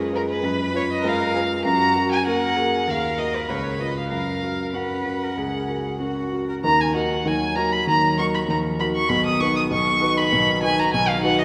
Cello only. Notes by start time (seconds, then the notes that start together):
Already playing: G#4
0.44 B4
1.04 A#4
1.34 G#4
1.65 F#4
2.26 A#4
2.56 G#4
2.87 A#4
3.48 B4
4.11 A#4
4.74 B4
5.23 A#4
5.38 G#4
6.02 F#4
6.49 A#4
6.64 D#3
7.26 F#3
7.87 F#3
8.48 F3
9.09 D#3
10.92 D#3